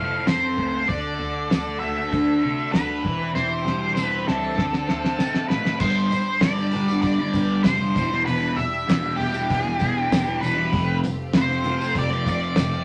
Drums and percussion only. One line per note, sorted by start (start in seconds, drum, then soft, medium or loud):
0.27 snare medium
0.27 open hi-hat soft
0.27 tambourine medium
0.58 kick medium
0.89 kick loud
0.89 open hi-hat medium
1.51 snare loud
1.51 open hi-hat soft
1.51 tambourine medium
2.13 kick loud
2.13 open hi-hat soft
2.74 snare loud
2.74 open hi-hat soft
2.74 tambourine medium
3.05 kick medium
3.36 snare medium
3.67 snare medium
3.96 snare medium
3.96 tambourine medium
4.28 snare medium
4.58 kick loud
4.58 snare medium
4.73 snare medium
4.89 snare medium
5.05 snare medium
5.19 snare medium
5.19 tambourine medium
5.35 snare medium
5.50 snare medium
5.65 snare medium
5.80 kick loud
5.80 crash loud
5.80 tambourine soft
6.11 open hi-hat medium
6.11 tambourine medium
6.41 snare loud
6.41 open hi-hat medium
6.41 tambourine medium
6.58 tambourine soft
6.72 open hi-hat medium
6.89 tambourine medium
7.02 kick medium
7.02 open hi-hat medium
7.34 kick medium
7.34 open hi-hat soft
7.34 tambourine medium
7.64 snare loud
7.64 open hi-hat medium
7.64 tambourine medium
7.81 tambourine soft
7.96 kick loud
7.96 open hi-hat medium
7.96 tambourine medium
8.12 snare soft
8.27 open hi-hat medium
8.27 tambourine soft
8.59 open hi-hat soft
8.89 snare loud
8.89 open hi-hat medium
8.89 tambourine medium
9.04 tambourine soft
9.20 open hi-hat medium
9.34 tambourine medium
9.50 kick medium
9.50 open hi-hat medium
9.79 kick medium
9.79 open hi-hat medium
9.79 tambourine medium
10.12 snare loud
10.12 open hi-hat medium
10.12 tambourine loud
10.43 open hi-hat medium
10.43 tambourine medium
10.73 kick loud
10.73 open hi-hat medium
10.73 tambourine soft
11.04 open hi-hat medium
11.04 tambourine medium
11.34 snare loud
11.34 open hi-hat medium
11.34 tambourine medium
11.52 tambourine soft
11.64 open hi-hat medium
11.81 tambourine medium
11.95 kick medium
11.95 open hi-hat medium
12.11 snare soft
12.26 kick medium
12.26 open hi-hat medium
12.26 tambourine medium
12.56 snare loud
12.56 open hi-hat medium
12.56 tambourine loud
12.74 tambourine soft